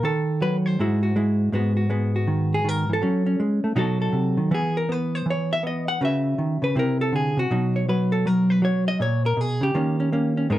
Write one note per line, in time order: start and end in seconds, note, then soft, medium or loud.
0.03 0.76 D#3 medium
0.03 0.78 A4 medium
0.41 0.78 F#3 medium
0.41 0.56 B4 medium
0.66 1.53 C5 medium
0.79 1.51 G#2 medium
0.79 1.15 G#3 soft
0.79 1.15 E4 soft
0.79 1.02 F#4 soft
1.03 1.51 F#4 soft
1.16 1.51 G#3 medium
1.16 1.51 E4 soft
1.52 3.01 G#2 medium
1.52 1.88 G#3 soft
1.52 1.89 B3 soft
1.52 1.76 F#4 soft
1.77 2.15 F#4 soft
1.90 3.00 G#3 medium
1.90 3.02 B3 soft
2.16 2.89 F#4 soft
2.27 2.63 D#3 medium
2.54 2.69 G#4 medium
2.64 2.88 D#3 medium
2.69 2.90 A#4 medium
2.89 3.02 E3 medium
2.93 3.41 A4 medium
3.02 3.39 F#3 medium
3.02 3.25 C#4 soft
3.26 3.75 C#4 soft
3.40 3.63 G#3 medium
3.64 3.76 A3 medium
3.76 4.12 B2 medium
3.76 4.50 F#3 medium
3.76 4.49 D#4 medium
3.76 4.50 F#4 medium
3.76 4.00 A4 medium
4.02 4.50 A4 medium
4.13 4.37 C3 medium
4.37 4.50 D#3 medium
4.51 5.25 E3 medium
4.51 4.88 B3 soft
4.51 4.76 G#4 medium
4.77 4.92 A#4 medium
4.89 5.62 B3 medium
4.89 5.15 B4 medium
5.15 5.27 C5 medium
5.26 5.98 E3 medium
5.30 5.52 C#5 medium
5.53 5.64 E5 loud
5.63 6.00 B3 medium
5.63 5.88 D#5 medium
5.88 6.00 F#5 loud
6.01 6.38 C#3 medium
6.01 6.73 C#4 medium
6.01 6.74 F#4 soft
6.01 6.63 B4 soft
6.05 6.64 E5 medium
6.38 6.62 D#3 medium
6.62 6.75 C#3 medium
6.62 6.76 B4 medium
6.75 7.36 C3 medium
6.75 7.48 C4 soft
6.75 7.49 E4 soft
6.75 7.01 A#4 medium
7.01 7.13 A4 medium
7.12 7.36 D3 medium
7.12 7.38 G#4 medium
7.37 7.49 C3 medium
7.37 7.75 F#4 medium
7.51 8.98 B2 medium
7.51 7.87 F#3 soft
7.51 8.98 D#4 soft
7.76 7.89 C#5 soft
7.89 8.24 F#3 medium
7.89 8.12 B4 medium
8.12 8.27 A4 medium
8.26 8.61 F#3 medium
8.26 8.50 A#4 medium
8.50 8.62 B4 medium
8.62 8.99 F#3 medium
8.62 8.87 C#5 medium
8.88 9.00 D#5 medium
9.00 9.36 A#2 medium
9.00 9.24 C#5 medium
9.26 9.41 A#4 medium
9.37 9.61 B2 medium
9.37 9.63 G#4 medium
9.61 9.74 C#3 medium
9.61 10.50 G4 medium
9.75 10.47 D#3 medium
9.75 10.11 A#3 soft
9.75 9.99 C#4 soft
10.00 10.12 C#4 soft
10.12 10.47 A#3 medium
10.12 10.36 C#4 soft
10.37 10.48 C#4 soft
10.50 10.59 G#2 medium
10.50 10.59 G#3 medium
10.50 10.59 B3 soft
10.50 10.59 D#4 medium
10.50 10.59 A#4 medium